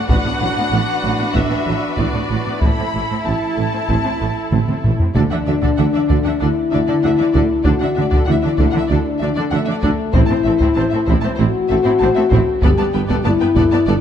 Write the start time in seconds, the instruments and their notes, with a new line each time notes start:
0.09 tuba A1, double bass section A1, cello section A2, viola section B3 D4, french horn section B3 D4, violin section F#4 B4 F#5, taiko
0.25 cello section A2, viola section B3
0.41 tuba A1, double bass section A1, cello section A2, viola section F#3
0.57 cello section A2, viola section B3
0.72 tuba A1, double bass section A1, cello section A2, viola section B3
1.03 tuba A1, double bass section A1, cello section A2, viola section F#3
1.19 cello section A2, viola section B3
1.34 tuba A1, double bass section A1, cello section A2, viola section B3, french horn section B3 D4, violin section E5, taiko
1.51 cello section A2, viola section B3
1.66 tuba A1, double bass section A1, cello section A2, viola section F#3
1.96 tuba A1, double bass section A1, cello section A2, viola section B3, violin section D5, taiko
2.14 cello section A2, viola section B3
2.29 tuba A1, double bass section A1, cello section A2, viola section F#3
2.46 cello section A2, viola section B3
2.61 tuba A1, double bass section A1, cello section A2, french horn section C4 E4, viola section C4 E4, violin section E4 A4 B5, taiko
2.79 cello section A2, viola section C4
2.94 tuba A1, double bass section A1, cello section A2, viola section A3
3.11 cello section A2, viola section C4
3.25 tuba A1, double bass section A1, cello section A2, viola section C4, violin section A5
3.57 tuba A1, double bass section A1, cello section A2, viola section A3
3.73 cello section A2, viola section C4
3.88 tuba A1, double bass section A1, cello section A2, viola section C4, french horn section C4 E4, taiko
4.05 cello section A2, viola section C4
4.20 tuba A1, double bass section A1, cello section A2, viola section A3
4.52 tuba A1, double bass section A1, cello section A2, viola section C4, taiko mid
4.68 cello section A2, viola section C4, taiko mid
4.84 double bass section A1, tuba A1, cello section A2, viola section A3, taiko low-mid
5.00 cello section A2, viola section C4, taiko low
5.14 tuba D2, double bass section D2, cello section D3, viola section D4, french horn section D4, violin section A4 D5, taiko
5.30 cello section D3, viola section D4, violin section E5 F#5
5.46 tuba D2, double bass section D2, cello section D3, viola section D4, violin section D5 E5
5.62 cello section D3, viola section D4, violin section A4 D5, taiko
5.77 tuba D2, double bass section D2, cello section D3, viola section D4, violin section E5 F#5
5.93 cello section D3, viola section D4, violin section D5 E5
6.08 tuba D2, double bass section D2, cello section D3, viola section D4, violin section A4 D5, taiko
6.24 cello section D3, viola section D4, violin section E5 F#5
6.40 double bass section D2, tuba D2, cello section D3, viola section D4, french horn section E4, violin section A4 D5
6.71 double bass section D2, tuba D2, cello section D3, viola section D4, violin section D5 E5
6.87 cello section D3, viola section D4, violin section A4 D5
7.02 tuba D2, double bass section D2, cello section D3, viola section D4, violin section E5 F#5
7.17 cello section D3, viola section D4, violin section D5 E5
7.33 tuba D2, double bass section D2, cello section D3, viola section D4, violin section A4 D5, taiko
7.64 tuba D2, double bass section D2, cello section D3, viola section D4, french horn section F#4, violin section A4 D5, taiko
7.80 cello section D3, viola section D4, violin section E5 F#5
7.95 double bass section D2, tuba D2, cello section D3, viola section D4, violin section D5 E5
8.10 cello section D3, viola section D4, violin section A4 D5, taiko
8.26 double bass section D2, tuba D2, cello section D3, viola section D4, french horn section E4, violin section E5 F#5
8.42 cello section D3, viola section D4, violin section D5 E5
8.57 tuba D2, double bass section D2, cello section D3, viola section D4, violin section A4 D5, taiko
8.72 cello section D3, viola section D4, violin section F#5
8.77 violin section E5
8.88 tuba D2, double bass section D2, cello section D3, viola section D4, french horn section D4, violin section A4 D5
9.19 tuba D2, double bass section D2, cello section D3, viola section D4, violin section D5 E5
9.35 cello section D3, viola section D4, violin section A4 D5
9.51 tuba D2, double bass section D2, cello section D3, french horn section A3, viola section D4, violin section E5 F#5
9.66 cello section D3, viola section D4, violin section E5
9.70 violin section D5
9.81 double bass section D2, tuba D2, cello section D3, viola section D4, violin section A4 D5, taiko
10.13 double bass section A1, tuba A1, cello section A2, viola section C4, violin section E4 C5, french horn section E4, taiko
10.27 cello section A2, viola section C4, violin section A5
10.33 violin section C5
10.43 tuba A1, double bass section A1, cello section A2, viola section C4, violin section E5
10.48 violin section A4
10.58 cello section A2, viola section C4, violin section C5, taiko
10.62 violin section E4
10.74 tuba A1, double bass section A1, cello section A2, viola section C4, violin section A5
10.79 violin section C5
10.90 cello section A2, viola section C4, violin section A4 E5
11.05 tuba A1, double bass section A1, cello section A2, viola section C4, violin section C5, taiko
11.10 violin section E4
11.20 cello section A2, viola section C4, violin section C5 A5
11.36 tuba A1, cello section A2, viola section C4, violin section E4 C5
11.40 double bass section A1, french horn section F#4
11.68 tuba A1, double bass section A1, cello section A2, viola section C4, violin section A4 E5
11.83 cello section A2, viola section C4, violin section E4 C5
11.99 tuba A1, double bass section A1, cello section A2, viola section C4, violin section C5 A5
12.15 cello section A2, viola section C4, violin section A4 E5
12.30 tuba A1, double bass section A1, cello section A2, viola section C4, violin section E4 C5, taiko
12.62 tuba G1, double bass section G1, cello section G2, viola section B3, french horn section G4, violin section A4 D5, taiko
12.78 cello section G2, viola section B3, violin section D5 A5
12.94 tuba G1, double bass section G1, cello section G2, viola section B3, violin section B4 G5
13.09 cello section G2, viola section B3, violin section A4 D5, taiko
13.24 tuba G1, double bass section G1, cello section G2, viola section B3, french horn section E4, violin section D5 A5
13.40 cello section G2, viola section B3, violin section B4 G5
13.55 tuba G1, double bass section G1, cello section G2, viola section B3, violin section A4 D5, taiko
13.71 cello section G2, viola section B3, violin section D5 A5
13.86 tuba G1, double bass section G1, cello section G2, viola section B3, french horn section D4, violin section A4 D5